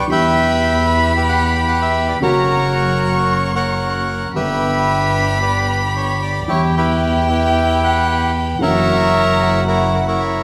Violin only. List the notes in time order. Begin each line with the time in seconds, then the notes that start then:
Already playing: C#6
0.10 B5
2.23 A#5
2.75 C#6
4.36 B5
6.50 G5
8.62 F#5
9.16 A#5
9.42 F#5
10.21 E5